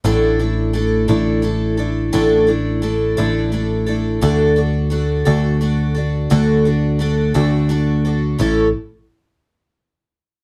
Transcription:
X:1
M:6/8
L:1/8
Q:3/8=58
K:D
V:1 name="Twelve-string acoustic guitar"
[A,,D,A,DEA] [A,DEA] [A,DEA] [A,,D,A,DEA] [A,DEA] [A,DEA] | [A,,D,A,DEA] [A,DEA] [A,DEA] [A,,D,A,DEA] [A,DEA] [A,DEA] | [D,A,DFA] [DFA] [A,DFA] [D,A,DFA] [A,DFA] [DFA] | [D,A,DFA] [DFA] [A,DFA] [D,A,DFA] [A,DFA] [DFA] |
[A,,E,A,CEA] z4 z |]
V:2 name="Picked electric bass" clef=bass
A,,,3 A,,,3 | A,,,3 A,,,3 | D,,3 D,,3 | D,,3 D,,3 |
A,,, z4 z |]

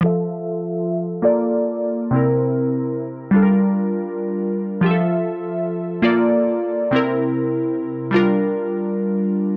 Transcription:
X:1
M:4/4
L:1/8
Q:"Swing 16ths" 1/4=100
K:F
V:1 name="Synth keys"
[F,FAe]4 [B,FAd]3 [C,CEB]- | [C,CEB]3 [G,DFAB]4- [G,DFAB] | [F,FGAe]4 [B,FAd]3 [C,CEB]- | [C,CEB]3 [G,DFB]4- [G,DFB] |]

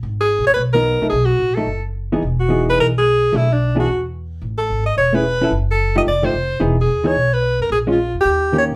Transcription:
X:1
M:4/4
L:1/8
Q:"Swing" 1/4=219
K:Elyd
V:1 name="Alto saxophone"
z G2 c B A3 | G F2 =A2 z3 | z F2 B A G3 | E =D2 F2 z3 |
z =A2 d c B3 | z =A2 d =d =c3 | z G2 c2 B2 A | G ^E2 =G3 c z |]
V:2 name="Hollow-body jazz guitar"
z4 z [F,B,D]2 [F,=A,D] | z3 [F,=A,D] z3 [E,B,DG] | z2 [E,B,DG]3 z3 | [F,=A,=D] z2 [E,B,DG] z4 |
z4 z [=A,CEG] z [F,CE=A] | z3 [^E,=A,D=G] z [=F,A,_EG] z2 | [E,B,DG] z2 [E,B,DG] z4 | z [G,C^E] z4 [D,A,C=G]2 |]
V:3 name="Upright bass" clef=bass
G,,,2- (3G,,, B,,, =A,,, B,,,3 ^B,,, | B,,,2 A,,,2 F,,,4 | E,,,4 B,,,4 | B,,,4 E,,4 |
=A,,,2 G,,,2 E,,,4 | F,,,4 =F,,,2 F,,,2 | E,,,2 D,,2 B,,,3 ^E,, | A,,,3 E,, D,,3 B,,, |]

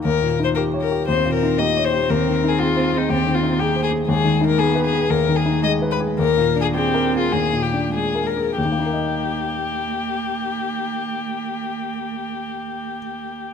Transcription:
X:1
M:4/4
L:1/16
Q:1/4=108
K:Eb
V:1 name="Violin"
B3 c B2 B2 c2 B2 e2 c2 | B3 A F3 E G2 F2 G2 A2 | A3 B A2 A2 B2 A2 e2 _c2 | B3 A G3 F A2 G2 A2 B2 |
G16- | G16 |]
V:2 name="Grand piano"
(3E,,2 B,,2 E2 (3G2 _d2 G2 (3E,,2 B,,2 E2 (3G2 d2 G2 | (3E,,2 E,2 E2 (3A2 c2 A2 (3E,,2 E,2 E2 (3A2 c2 A2 | (3E,,2 E,2 E2 (3A2 _c2 A2 (3E,,2 E,2 E2 (3A2 c2 A2 | (3E,,2 B,,2 D2 (3A2 B2 A2 (3E,,2 B,,2 D2 (3A2 B2 A2 |
[E,,E,B,EBe]16- | [E,,E,B,EBe]16 |]
V:3 name="Cello"
z8 C4 B,4 | C12 B,4 | A,4 _C4 B,4 A,4 | B,4 C4 B,4 A,2 z2 |
B,16- | B,16 |]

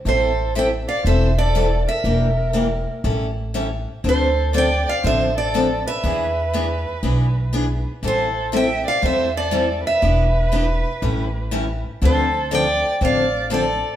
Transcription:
X:1
M:4/4
L:1/8
Q:"Swing" 1/4=120
K:Am
V:1 name="Steel-string acoustic guitar"
c2 g f e d2 e- | e6- e z | c2 g f e d2 e- | e6- e z |
c2 g f e d2 e- | e6- e z | c2 g2 f2 d2 |]
V:2 name="Violin"
A2 e d c A2 _B- | _B4 z4 | A2 d d c A2 B- | B6- B z |
A2 e d c A2 B- | B6- B z | A2 d2 d2 A2 |]
V:3 name="Steel-string acoustic guitar"
[E,G,CEA] z [E,G,CEA] z [E,G,CEA] z [E,G,CEA] z | [E,_B,DG] z [E,B,DG] z [E,G,^CEA] z [E,G,CEA] z | [D,F,CDA] z [D,F,CDA] z [D,F,CDA] z [D,F,CDA] z | [E,B,D^G] z [E,B,DG] z [E,B,DG] z [E,B,DG] z |
[E,G,CEA] z [E,G,CEA] z [E,G,CEA] z [E,G,CEA] z | [E,B,DG] z [E,B,DG] z [E,G,^CEA] z [E,G,CEA] z | [D,F,CDA] z [D,F,CDA] z [D,F,CDA] z [D,F,CDA] z |]
V:4 name="Upright bass" clef=bass
A,,,4 E,,,4 | E,,,4 A,,,4 | D,,4 A,,,4 | E,,4 B,,,4 |
A,,,4 E,,4 | E,,,4 A,,,4 | D,,4 A,,,4 |]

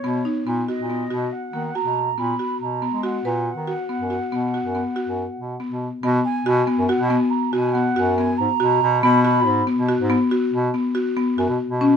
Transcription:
X:1
M:7/4
L:1/16
Q:1/4=140
K:B
V:1 name="Flute"
c4 z2 d6 f4 a4 b4 a4 | f24 z4 | d2 g6 f2 g2 a2 g2 f4 g2 a6 | b2 b4 z16 z6 |]
V:2 name="Marimba"
B,2 D2 B,2 F2 B,2 F4 A,2 F4 B,2 F4 B,2 | F2 B4 F2 B,2 F2 B,2 F2 B,2 F4 z2 B,4 | B,4 F2 B,2 F2 B,4 F2 B,2 F2 B,4 F4 | B,2 F4 B,2 F2 B,2 F4 B,2 F2 B,2 F4 C2 |]
V:3 name="Bass clarinet" clef=bass
B,,2 z2 A,,2 z A,,3 B,,2 z2 D,2 z B,,3 A,,2 z2 B,,3 G,- | G,2 A,,3 D,2 z2 F,,2 z B,,3 F,,2 z2 F,,2 z B,,2 z B,,2 z | B,,2 z2 B,,2 z F,, z B,,2 z3 B,,4 F,,4 G,, z B,,2 B,,2 | B,,4 G,,2 z B,,2 G,,2 z3 B,,2 z6 F,, B,, z B,,3 |]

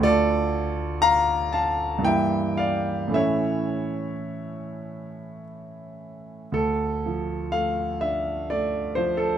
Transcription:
X:1
M:3/4
L:1/16
Q:1/4=59
K:Dm
V:1 name="Grand piano"
[Ad]4 [fb]2 [fa]2 [eg]2 [df]2 | [^ce]8 z4 | A4 f2 e2 d2 c A |]
V:2 name="Grand piano" clef=bass
[D,,D,A,F]8 [G,,E,B,E]4 | [A,,E,A,^C]12 | D,,2 F,2 A,2 D2 A,2 F,2 |]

